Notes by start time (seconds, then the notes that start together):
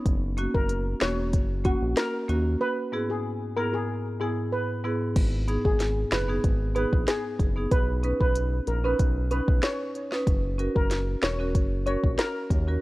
0.06 F#1, kick, closed hi-hat
0.37 A#3 C#4 F#4, closed hi-hat
0.54 F#1 A#4, kick
0.69 closed hi-hat
1.00 E1 A#3 C#4 F#4 C#5, cross-stick, snare, closed hi-hat
1.33 F#1, kick, closed hi-hat
1.64 A#3 C#4 F#4, kick, closed hi-hat
1.82 A#1
1.97 A#4, cross-stick, snare, closed hi-hat
2.28 D#2 A#3 C#4 F#4, closed hi-hat
2.61 B4
2.92 G#2 B3 E4 G#4
3.10 G#4
3.56 G#2 B3 E4 G#4 A#4
3.73 G#4
4.20 G#2 B3 E4 G#4
4.52 B4
4.84 G#2 B3 E4 G#4
5.16 G#1, kick, closed hi-hat, crash
5.48 B3 D#4 G#4, closed hi-hat
5.65 G#1 G#4, kick
5.80 snare, closed hi-hat
6.11 F#1 D#4 G#4 B4, cross-stick, snare, closed hi-hat
6.28 B3 D#4 G#4
6.44 G#1, kick, closed hi-hat
6.75 B3 D#4 G#4 B4, closed hi-hat
6.93 A#1, kick
7.08 G#4, cross-stick, snare, closed hi-hat
7.39 F#1 D#4 G#4, kick, closed hi-hat
7.56 B3 D#4 G#4
7.71 B1 B4, kick, closed hi-hat
8.03 C#4 D#4 B4, closed hi-hat
8.20 B1 B4, kick
8.35 closed hi-hat
8.67 A#1 D#4 A#4, closed hi-hat
8.84 C#4 D#4 B4
8.99 B1, kick, closed hi-hat
9.31 C#4 D#4 B4, closed hi-hat
9.48 B1, kick
9.63 C#5, cross-stick, snare, closed hi-hat
9.95 D#4 C#5, closed hi-hat
10.11 C#4 D#4 B4, snare
10.27 F#1, kick, closed hi-hat
10.58 C#4 F#4 A#4, closed hi-hat
10.75 F#1 A#4, kick
10.91 snare, closed hi-hat
11.22 E1 F#4 A#4 C#5, cross-stick, snare, closed hi-hat
11.39 C#4 F#4 A#4
11.55 F#1, kick, closed hi-hat
11.86 C#4 F#4 A#4 C#5, closed hi-hat
12.03 A#1, kick
12.18 A#4, cross-stick, snare, closed hi-hat
12.50 D#2 F#4 C#5, kick, closed hi-hat
12.67 C#4 F#4 A#4